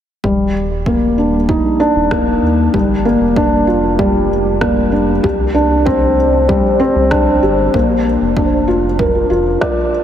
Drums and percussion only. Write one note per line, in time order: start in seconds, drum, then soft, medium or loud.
0.24 kick medium
0.86 kick medium
1.49 kick medium
2.11 kick medium
2.11 cross-stick medium
2.74 kick medium
3.36 kick medium
3.99 kick medium
4.61 kick medium
4.61 cross-stick medium
5.24 kick medium
5.87 kick loud
6.49 kick loud
7.11 kick medium
7.11 cross-stick medium
7.74 kick medium
8.37 kick medium
8.99 kick loud
9.62 kick medium
9.62 cross-stick medium